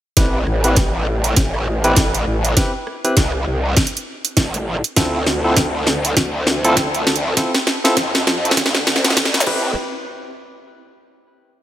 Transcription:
0.17 A1 C4 E4 G4 B4, kick, snare, closed hi-hat
0.47 A1, cross-stick
0.64 C4 E4 G4 B4, closed hi-hat
0.76 kick, snare, closed hi-hat
1.24 closed hi-hat
1.36 A1, kick, snare, closed hi-hat
1.54 cross-stick
1.84 C4 E4 G4 B4, closed hi-hat
1.96 kick, snare, closed hi-hat
2.14 closed hi-hat
2.27 A1
2.45 closed hi-hat
2.57 C4 E4 G4 B4, kick, snare, closed hi-hat
2.87 cross-stick
3.04 C4 E4 G4 B4, closed hi-hat
3.17 C2, kick, snare, closed hi-hat
3.47 C2
3.77 kick, snare, closed hi-hat
3.87 closed hi-hat
3.97 closed hi-hat
4.25 closed hi-hat
4.37 A1, kick, snare, closed hi-hat
4.54 closed hi-hat
4.84 closed hi-hat
4.96 D2 C4 E4 F4 A4, kick, snare, closed hi-hat
5.27 D2, snare
5.44 C4 E4 F4 A4
5.57 kick, snare, closed hi-hat
5.87 snare
6.05 closed hi-hat
6.17 D2, kick, snare, closed hi-hat
6.47 snare
6.64 C4 E4 F4 A4, closed hi-hat
6.77 kick, snare, closed hi-hat
6.95 closed hi-hat
7.07 D2, snare
7.16 closed hi-hat
7.37 C4 E4 F4 A4, kick, snare, closed hi-hat
7.55 snare
7.67 snare
7.84 C4 E4 F4 A4, snare, closed hi-hat
7.97 F2, kick, snare, closed hi-hat
8.15 snare
8.27 F2, snare
8.45 closed hi-hat
8.51 snare
8.57 D2, kick, snare, closed hi-hat
8.66 snare
8.75 snare
8.87 D2, snare
8.96 snare
9.04 snare, closed hi-hat
9.10 snare
9.17 kick, snare, closed hi-hat
9.25 snare
9.34 snare, closed hi-hat
9.40 snare
9.47 A1 C4 E4 G4 B4, kick, crash

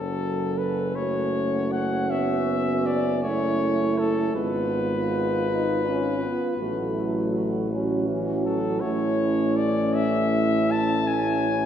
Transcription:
Already playing: F#1 F#3 C#4 A4
0.58 B4
0.96 A3 F#4 C#5
1.72 F#5
2.10 B3 E5
2.86 D5
3.23 A3 E4 C#5
3.99 A4
4.33 G#1 G#3 B3 F4 B4
5.48 D#4
5.86 C#4
6.23 B3
6.58 A1 F#3 A3 F#4
6.94 E4
7.31 F#4
7.69 F#3 C#4 F#4
8.07 E3
8.45 F#3 A4
8.81 A1 A3 E4 C#5
8.85 C#4
9.57 D5
9.95 E4 E5
10.71 A5
11.07 C#4 G#5

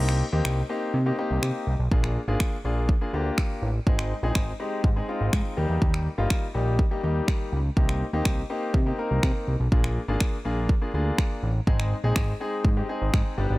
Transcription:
Already playing: C2 A#3 C4 D#4 G4
0.09 finger snap
0.32 D#2 A#3 C4 D#4 G4
0.45 C2, finger snap
0.69 A#3 C4 D#4 G4
0.94 C3
1.06 A#3 C4 D#4 G4
1.18 A#3 C4 D#4 G4
1.31 C2
1.43 C3, finger snap
1.67 C2
1.79 B1
1.92 A#1 A#3 D4 F4 G#4, kick
2.04 finger snap
2.28 G#1 A#3 D4 F4 G#4
2.40 finger snap, kick
2.65 A#1 A#3 D4 F4 G#4
2.89 kick
3.01 A#3 D4 F4 G#4
3.13 D2 A#3 D4 F4 G4
3.38 finger snap, kick
3.62 A1
3.87 G#1 G#3 C4 D#4 G#4, kick
3.99 finger snap
4.23 A#1 G#3 C4 D#4 G#4
4.35 G#1, finger snap, kick
4.60 G#3 C4 D#4 G4
4.84 G#2, kick
4.96 G#3 C4 D#4 G#4
5.08 G#3 C4 D#4 F4
5.21 G#1
5.33 G#2, finger snap, kick
5.57 D#2 G3 A#3 D#4 G4
5.70 E2
5.82 D#2, kick
5.94 finger snap
6.18 G1 G3 A#3 D#4 F4
6.30 finger snap, kick
6.54 A#1 G3 A#3 D#4 G4
6.79 kick
6.91 G3 A#3 D#4 G4
7.03 D#2 G3 A#3 D#4 G4
7.28 finger snap, kick
7.52 C#2
7.77 C2 A#3 C4 D#4 G4, kick
7.89 finger snap
8.13 D#2 A#3 C4 D#4 G4
8.25 C2, finger snap, kick
8.50 A#3 C4 D#4 G4
8.74 C3, kick
8.86 A#3 C4 D#4 G4
8.98 A#3 C4 D#4 A#4
9.11 C2
9.23 C3, finger snap, kick
9.48 C2
9.60 B1
9.72 A#1 A#3 D4 F4 G#4, kick
9.84 finger snap
10.08 G#1 A#3 D4 F4 G#4
10.20 finger snap, kick
10.45 A#1 A#3 D4 F4 G#4
10.69 kick
10.81 A#3 D4 F4 G#4
10.94 D2 A#3 D4 F4 G#4
11.18 finger snap, kick
11.43 A1
11.67 G#1 G#3 C4 D#4 G#4, kick
11.80 finger snap
12.04 A#1 G#3 C4 D#4 G#4
12.16 G#1, finger snap, kick
12.40 G#3 C4 D#4 G#4
12.65 G#2, kick
12.77 G#3 C4 D#4 G4
12.89 G#3 C4 D#4 G#4
13.02 G#1
13.14 G#2, finger snap, kick
13.38 G1 G3 B3 D4 G4
13.50 G#1

